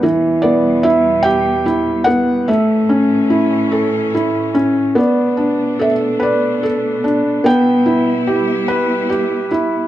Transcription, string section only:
0.00 E2 B2 G3
2.48 A2 E3 C#4
4.96 B2 A3 D4
7.47 G3 B3 E4

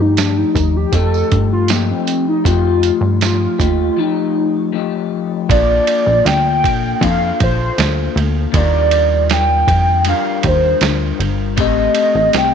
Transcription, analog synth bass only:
0.00 G2
0.55 D#2
0.92 F2
1.32 G2
2.45 F2
3.01 G2
3.59 D#2
5.49 A#1
6.06 A#1
6.25 D2
6.64 A#1
7.01 F2
7.40 A#1
7.78 D2
8.16 D2
8.54 D#2
9.68 F2
10.44 D#2
10.81 D2
11.19 G1
11.57 A1
12.15 A1
12.34 C2

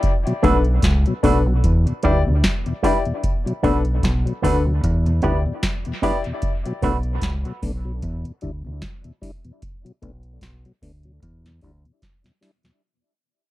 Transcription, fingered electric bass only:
0.44 B1
0.83 C#2
1.24 B1
1.65 E2
2.05 D2
2.28 D2
3.64 B1
4.04 B1
4.44 D2
4.84 E2
5.25 D2
6.83 B1
7.22 C#2
7.63 B1
8.03 E2
8.44 D2
8.66 D2
10.03 B1
10.42 B1
10.83 D2
11.23 E2
11.64 D2

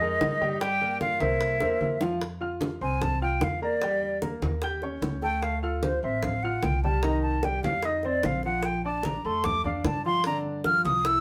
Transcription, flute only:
Already playing: D#5
0.60 G5
1.01 F5
1.20 E5
2.83 G#5
3.02 A5
3.22 G5
3.44 F5
3.63 D5
5.22 G5
5.42 F5
5.62 A4
5.83 C5
6.03 E5
6.24 F5
6.43 F#5
6.64 G5
6.83 A5
7.03 A#5
7.22 A5
7.45 G5
7.64 F5
7.85 D#5
8.06 D5
8.25 F5
8.45 F#5
8.66 G5
8.85 A5
9.05 A#5
9.26 C6
9.45 D6
9.66 F5
9.86 A5
10.05 C6
10.27 A#5
10.65 F6
10.85 D#6
11.07 E6

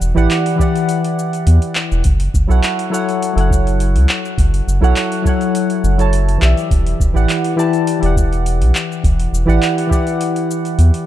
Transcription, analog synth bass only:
0.01 E1
0.17 A1
1.47 E2
1.92 E1
2.05 F#1
2.34 F#1
2.50 B1
3.36 F#1
3.95 C#2
4.38 F#1
4.68 F#1
4.82 B1
5.84 F#1
6.42 B1
6.71 E1
7.00 E1
7.16 A1
8.03 E1
8.61 B1
9.04 E1
9.33 E1
9.48 A1
10.79 E2

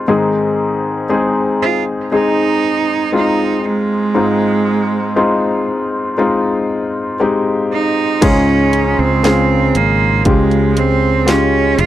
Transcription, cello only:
1.62 F4
2.13 D#4
3.17 D#4
3.68 G#3
7.73 D#4
8.23 C#4
9.00 C4
9.77 A#3
10.27 G#3
10.78 C4
11.29 C#4
11.79 F4

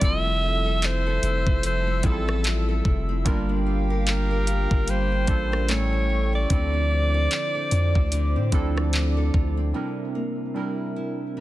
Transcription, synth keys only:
0.00 G3 C4 E4 F4 A4
2.03 G3 C4 E4 F4 G#4
2.12 A4
3.25 G3 A#3 D4 F4 A#4
5.28 G3 A#3 D4 F4 A4
5.68 G3 A3 C#4 E4 A4
6.50 F3 C4 D4 E4 A4
8.52 F3 C4 D4 E4 A4
9.73 G3 C4 D4 E4 A#4
10.54 G3 C4 D4 E4 A#4

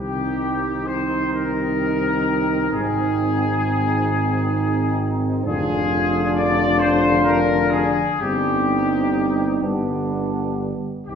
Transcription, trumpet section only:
Already playing: G4
0.87 C5
1.33 A#4
2.73 G#4
5.45 G#4
6.34 D5
6.79 C5
7.24 A#4
7.70 G#4
8.21 G4
11.07 G4

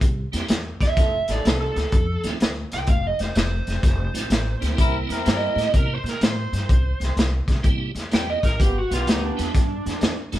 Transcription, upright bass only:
0.01 C2
0.33 E2
0.49 E2
0.81 E2
0.97 F1
1.29 A1
1.45 C2
1.76 D2
1.93 F2
2.24 D#2
2.41 D2
2.72 C2
2.88 F1
3.20 F1
3.36 F1
3.68 F1
3.83 F1
4.14 A1
4.30 A1
4.62 D2
4.79 C2
5.09 E2
5.26 G2
5.56 A2
5.75 C3
6.04 A#2
6.21 A2
6.53 G2
6.70 C2
7.00 C2
7.17 C2
7.48 C2
7.65 C2
7.95 E2
8.12 E2
8.43 A1
8.60 G1
8.91 B1
9.07 D2
9.39 E2
9.55 G2
9.86 F2
10.01 E2
10.33 E1

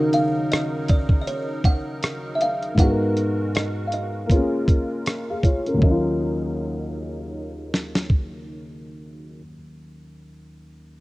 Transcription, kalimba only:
0.14 F5
0.52 D#5
0.90 D5
1.22 D#5
1.27 C#5
1.65 F#5
2.35 E5
2.42 F5
2.80 F#5
3.56 D#5
3.87 F5
3.94 D#5
4.32 C#5
5.83 D#5

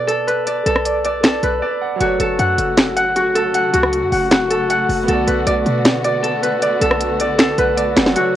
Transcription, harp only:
Already playing: F#4 B4 D5 F#5
0.07 A4
0.27 B4
0.47 D5
0.66 A4
1.05 D5
1.23 A4
1.43 B4
1.62 D5
2.01 F#4
2.20 A4
2.39 F#5
2.96 F#5
3.16 F#4
3.35 A4
3.55 F#5
3.73 F#4
4.12 F#5
4.31 F#4
4.50 A4
4.70 F#5
5.09 A4
5.27 B4
5.47 D5
6.04 D5
6.23 A4
6.43 B4
6.62 D5
6.81 A4
7.21 D5
7.38 A4
7.59 B4
7.77 D5
8.16 F#4

